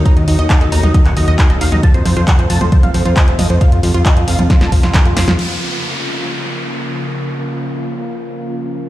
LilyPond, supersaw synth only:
\new Staff \with { instrumentName = "Supersaw synth" } { \time 4/4 \key bes \minor \tempo 4 = 135 bes''16 ees''16 ees''16 ees''16 a''16 ees''16 bes''16 ees''16 ees''16 ges''16 ees''16 ees''16 f''16 ees''16 f''16 ees''16 | a''16 c''16 c''16 c''16 ges''16 c''16 a''16 c''16 c''16 f''16 c''16 c''16 ees''16 c''16 ees''16 c''16 | f''16 f'16 f'16 f'16 ees''16 f'16 f''16 f'16 f'16 a''16 f'16 f'16 bes''16 f'16 c'''16 f'16 | r1 |
r1 | }